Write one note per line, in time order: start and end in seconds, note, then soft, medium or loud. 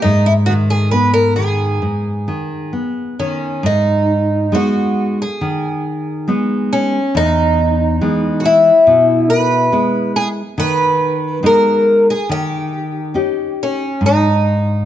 0.02 1.81 G#2 medium
0.02 0.26 D#4 medium
0.26 0.32 E4 medium
0.46 0.91 D#3 soft
0.46 0.52 F#4 medium
0.70 0.91 G#4 medium
0.91 1.36 B3 medium
0.91 1.13 B4 medium
1.14 1.36 A#4 medium
1.36 1.81 D#3 soft
1.36 3.14 G#4 medium
1.82 2.26 G#2 soft
2.28 2.72 D#3 soft
2.73 3.17 B3 soft
3.19 3.63 D#3 soft
3.19 3.65 C#4 medium
3.63 4.49 G#2 medium
3.63 4.56 D#4 medium
4.52 5.23 G#3 soft
4.52 5.23 B3 soft
4.52 5.23 D#4 soft
4.52 5.21 F#4 medium
5.22 6.78 G#4 medium
5.41 6.26 D#3 medium
6.28 6.97 G#3 soft
6.28 6.98 B3 soft
6.28 6.98 D#4 soft
6.73 7.17 C#4 medium
7.15 7.99 E2 medium
7.15 8.43 D#4 loud
8.01 8.70 E3 medium
8.01 8.70 G#3 soft
8.01 8.70 B3 soft
8.40 8.46 F#4 medium
8.45 9.33 E4 medium
8.87 9.70 B2 medium
9.30 10.11 B4 loud
9.72 10.41 G#3 soft
9.72 10.41 B3 soft
9.72 10.41 E4 medium
10.16 10.28 G#4 loud
10.58 11.41 D#3 medium
10.58 11.46 B4 loud
11.43 12.12 G#3 medium
11.43 12.12 B3 soft
11.43 12.12 D#4 medium
11.43 12.06 A#4 medium
12.10 12.31 G#4 medium
12.29 13.13 D#3 medium
12.29 13.64 G4 loud
13.14 13.84 C#4 soft
13.14 13.85 D#4 soft
13.14 13.85 G4 soft
13.63 14.06 C#4 medium
14.01 14.85 G#2 medium
14.06 14.85 D#4 medium